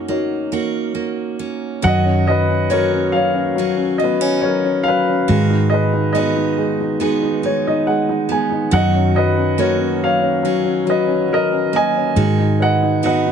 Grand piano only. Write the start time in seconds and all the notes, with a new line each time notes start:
Already playing: F#3 D#4 F#4 A#4 C#5 F#5
0.09 D#4 F#4 C#5
1.82 F#3 F#5
1.87 D#5
2.05 C#4
2.27 F#3 B4 D#5
2.48 C#4
2.70 F#3 A#4 C#5
2.92 C#4
3.12 F#3 C#5 F5
3.34 C#4
3.55 F#3
3.77 C#4
3.98 F#3 D#5
4.04 B4
4.21 C#4
4.41 F#3 A#4 C#5
4.64 C#4
4.83 F#3 F5
4.88 B4
5.08 C#4
5.29 G#3
5.50 D#4
5.70 G#3 D#5
5.74 B4
5.93 D#4
6.13 G#3 D#5
6.18 B4
6.36 D#4
6.58 G#3
6.80 D#4
7.01 G#3
7.23 D#4
7.45 G#3 C#5
7.67 D#4 D#5
7.87 G#3 F#5
8.09 D#4
8.31 G#3 G#5
8.51 D#4
8.72 F#3 D#5 F#5
8.95 C#4
9.15 F#3 B4 D#5
9.37 C#4
9.58 F#3 A#4 C#5
9.80 C#4
10.01 F#3 C#5 F5
10.22 C#4
10.43 F#3
10.64 C#4
10.85 F#3
10.90 B4 D#5
11.07 C#4
11.28 F#3
11.33 A#4 D#5
11.52 C#4
11.74 F#3 D#5 G#5
11.96 C#4
12.16 G#3
12.39 D#4
12.60 B4 D#5 F#5
12.83 D#4
13.06 B4 D#5 F#5
13.26 D#4